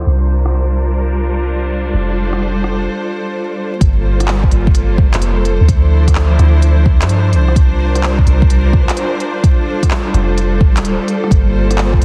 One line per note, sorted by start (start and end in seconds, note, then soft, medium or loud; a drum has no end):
0.00 1.90 C5 medium
0.06 1.92 C2 medium
0.06 3.78 G3 medium
0.06 3.77 D4 medium
0.06 3.78 F4 medium
0.06 1.92 A#4 medium
0.46 cross-stick medium
1.93 2.88 F1 medium
1.93 3.79 A4 medium
1.93 3.79 C5 medium
2.33 cross-stick medium
2.64 cross-stick medium
3.81 4.50 G1 loud
3.81 5.67 G3 medium
3.81 5.67 A#3 medium
3.81 5.67 F4 medium
3.81 7.52 A4 medium
3.81 11.27 C5 medium
3.81 kick loud
3.81 closed hi-hat medium
4.20 cross-stick medium
4.20 closed hi-hat medium
4.28 clap loud
4.44 kick medium
4.51 5.12 G1 medium
4.51 closed hi-hat soft
4.67 kick loud
4.75 closed hi-hat medium
4.98 kick loud
5.14 5.59 F1 medium
5.14 clap loud
5.14 closed hi-hat medium
5.22 closed hi-hat medium
5.45 closed hi-hat soft
5.61 6.38 D2 loud
5.68 7.54 F3 medium
5.68 11.27 D4 medium
5.68 7.54 E4 medium
5.68 kick loud
5.68 closed hi-hat medium
6.08 kick medium
6.08 cross-stick medium
6.08 closed hi-hat medium
6.15 clap loud
6.39 7.03 D2 medium
6.39 cross-stick medium
6.39 closed hi-hat soft
6.62 closed hi-hat medium
6.86 kick loud
7.01 7.35 G2 medium
7.01 clap loud
7.01 closed hi-hat medium
7.09 closed hi-hat medium
7.33 8.26 C2 loud
7.33 closed hi-hat soft
7.48 cross-stick medium
7.56 9.42 G3 medium
7.56 11.27 F4 medium
7.56 9.42 A#4 medium
7.56 kick loud
7.56 closed hi-hat medium
7.95 cross-stick medium
7.95 closed hi-hat medium
8.03 clap loud
8.19 kick medium
8.26 8.87 C2 medium
8.26 closed hi-hat soft
8.42 kick loud
8.50 closed hi-hat medium
8.73 kick loud
8.89 clap loud
8.89 closed hi-hat medium
8.97 closed hi-hat medium
9.20 closed hi-hat soft
9.44 12.05 G3 medium
9.44 12.05 A4 medium
9.44 kick loud
9.44 closed hi-hat medium
9.83 kick medium
9.83 cross-stick medium
9.83 closed hi-hat medium
9.91 clap loud
10.14 10.62 F1 medium
10.14 cross-stick medium
10.14 closed hi-hat soft
10.38 closed hi-hat medium
10.61 10.78 A1 medium
10.61 kick loud
10.77 10.98 D1 medium
10.77 clap loud
10.77 closed hi-hat medium
10.85 closed hi-hat medium
11.08 closed hi-hat soft
11.24 cross-stick soft
11.31 12.01 G1 loud
11.31 12.05 A#3 medium
11.31 12.05 F4 medium
11.31 12.05 C5 medium
11.31 kick loud
11.31 closed hi-hat medium
11.71 cross-stick medium
11.71 closed hi-hat medium
11.78 clap loud
11.94 kick medium
12.02 12.05 G1 medium
12.02 closed hi-hat soft